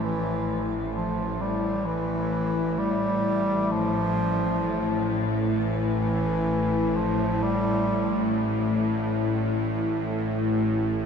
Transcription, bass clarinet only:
0.03 0.64 E3 medium
0.94 1.43 F3 medium
1.41 1.87 G3 medium
1.86 2.80 E3 medium
2.79 3.73 G3 medium
3.72 5.30 F3 loud
5.56 6.98 E3 medium
6.97 7.44 F3 medium
7.43 8.34 G3 medium

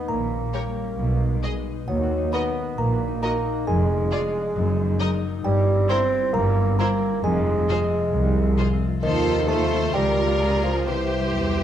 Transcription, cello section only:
0.08 0.46 A#2 medium
0.98 1.36 B2 medium
1.88 2.26 D#2 medium
2.79 3.15 A#2 medium
3.68 4.04 F2 medium
4.56 4.93 F#2 medium
5.45 5.82 G2 medium
6.34 6.72 G2 medium
7.24 7.61 F2 medium
8.14 8.51 C2 medium
9.03 9.90 D#2 medium
9.94 10.86 C#2 medium
10.88 11.31 C2 medium
11.36 11.63 E2 medium

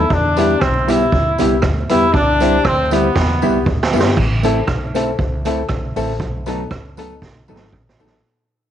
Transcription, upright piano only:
0.37 0.53 B3 medium
0.37 0.53 E4 medium
0.37 0.53 G4 loud
0.88 1.03 B3 medium
0.88 1.04 E4 medium
0.88 1.04 G4 loud
1.39 1.54 B3 medium
1.39 1.55 E4 medium
1.39 1.55 G4 loud
1.90 2.05 B3 medium
1.90 2.06 E4 medium
1.90 2.06 G4 loud
2.41 2.56 C4 loud
2.41 2.56 E4 medium
2.41 2.57 G4 loud
2.91 3.07 C4 medium
2.91 3.07 E4 medium
2.91 3.07 G4 medium
3.42 3.58 B3 medium
3.42 3.58 E4 medium
3.42 3.58 G4 loud
3.94 4.09 B3 medium
3.94 4.09 E4 medium
3.94 4.09 G4 medium
4.44 4.59 C4 loud
4.44 4.60 E4 medium
4.44 4.60 A4 loud
4.94 5.10 C4 medium
4.94 5.10 E4 medium
4.94 5.11 A4 loud
5.45 5.61 C4 medium
5.45 5.61 E4 medium
5.45 5.62 A4 loud
5.96 6.12 C4 loud
5.96 6.12 E4 medium
5.96 6.12 A4 loud
6.46 6.62 B3 loud
6.46 6.63 D#4 medium
6.46 6.63 A4 loud
6.98 7.13 B3 medium
6.98 7.14 D#4 medium
6.98 7.14 A4 loud
7.48 7.64 B3 medium
7.48 7.64 D#4 medium
7.48 7.65 A4 medium
8.00 8.15 B3 loud
8.00 8.15 D#4 medium
8.00 8.16 A4 loud

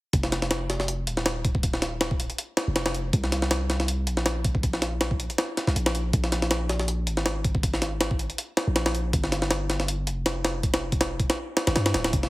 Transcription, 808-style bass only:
0.13 1.08 F1 medium
1.07 2.28 D#1 medium
2.68 3.12 F1 medium
3.13 4.09 C2 medium
4.07 5.28 A#1 medium
5.67 5.75 C2 medium
5.76 6.12 A#1 medium
6.13 7.09 A#1 medium
7.07 8.28 G#1 medium
8.67 9.12 A#1 medium
9.13 10.09 G1 medium
10.07 11.28 F1 medium
11.67 11.76 G1 medium
11.76 11.93 G2 medium
11.95 12.12 D1 loud
12.13 12.29 F1 medium

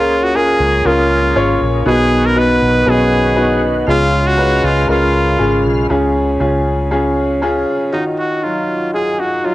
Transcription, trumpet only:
0.00 0.25 F4 loud
0.23 0.37 F#4 medium
0.36 0.88 G#4 loud
0.86 1.61 F4 medium
1.87 2.27 G#4 loud
2.26 2.40 A#4 medium
2.38 2.91 B4 loud
2.89 3.64 G#4 medium
3.90 4.28 F4 loud
4.27 4.66 F#4 loud
4.65 4.89 F4 loud
4.90 5.61 F4 medium
7.93 8.04 D#4 medium
8.18 8.45 F#4 medium
8.43 8.93 F4 medium
8.94 9.21 G#4 medium
9.19 9.46 F#4 medium
9.45 9.55 F4 medium

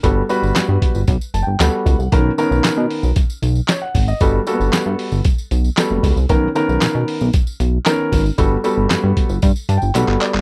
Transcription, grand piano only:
0.03 0.21 G3 medium
0.03 0.21 B3 medium
0.03 0.21 F#4 medium
0.03 0.21 A4 medium
0.29 0.99 G3 medium
0.29 0.99 B3 medium
0.29 0.99 F#4 medium
0.29 0.99 B4 medium
1.34 1.42 A5 medium
1.43 1.59 G5 medium
1.60 1.95 G3 medium
1.60 1.95 B3 medium
1.60 1.95 F#4 medium
1.60 1.95 A4 medium
1.60 2.09 F#5 medium
2.12 2.29 D#3 medium
2.12 2.30 B3 medium
2.12 2.30 C#4 medium
2.12 2.30 A#4 medium
2.38 3.08 D#3 medium
2.38 3.08 B3 medium
2.38 3.08 C#4 medium
2.38 3.08 A#4 medium
3.69 3.81 C#5 medium
3.82 4.07 F#5 medium
4.08 4.33 D#5 medium
4.21 4.38 G3 medium
4.21 4.38 B3 medium
4.21 4.39 F#4 medium
4.21 4.39 A4 medium
4.47 5.16 G3 medium
4.47 4.53 A#3 medium
4.47 5.17 F#4 medium
4.47 5.17 A4 medium
4.53 5.20 B3 medium
5.77 6.12 G3 medium
5.77 6.12 B3 medium
5.77 6.12 F#4 medium
5.77 6.12 A4 medium
6.29 6.47 D#3 medium
6.29 6.47 B3 medium
6.29 6.47 C#4 medium
6.29 6.47 A#4 medium
6.55 7.25 D#3 medium
6.55 7.25 B3 medium
6.55 7.25 C#4 medium
6.55 7.25 A#4 loud
7.86 8.21 D#3 medium
7.86 8.21 B3 medium
7.86 8.21 C#4 medium
7.86 8.21 A#4 medium
8.38 8.56 G3 medium
8.38 8.56 B3 medium
8.38 8.56 F#4 medium
8.38 8.56 A4 medium
8.64 9.34 G3 medium
8.64 9.34 B3 medium
8.64 9.34 F#4 medium
8.64 9.34 A4 medium
9.69 9.77 A5 medium
9.78 9.94 G5 medium
9.95 10.30 G3 medium
9.95 10.30 B3 medium
9.95 10.30 F#4 medium
9.95 10.30 A4 medium
9.95 10.19 F#5 medium
10.21 10.41 D5 medium

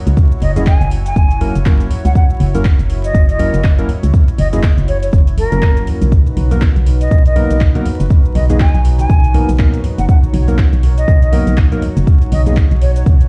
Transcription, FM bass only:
0.07 0.15 C#2 loud
0.42 0.77 F#1 loud
0.81 1.13 F#1 medium
1.16 1.51 F#1 loud
1.55 1.88 F#1 medium
2.05 2.14 C#2 loud
2.40 2.75 F#1 loud
2.79 3.12 F#1 medium
3.15 3.50 F#1 medium
3.54 3.86 F#1 medium
4.03 4.12 C#2 loud
4.38 4.74 F#1 loud
4.78 5.10 F#1 medium
5.13 5.48 F#1 medium
5.52 5.84 F#1 medium
6.02 6.34 B1 loud
6.37 6.72 B1 loud
6.76 7.08 B1 medium
7.11 7.46 B1 medium
7.50 7.83 B1 medium
8.00 8.09 F#1 loud
8.35 8.70 B1 loud
8.74 9.07 B1 medium
9.10 9.45 B1 loud
9.49 9.81 B1 medium
9.98 10.07 F#1 loud
10.34 10.69 B1 loud
10.73 11.05 B1 medium
11.08 11.43 B1 medium
11.47 11.79 B1 medium
11.97 12.05 F#1 loud
12.32 12.67 B1 loud
12.71 13.03 B1 medium
13.06 13.28 B1 medium

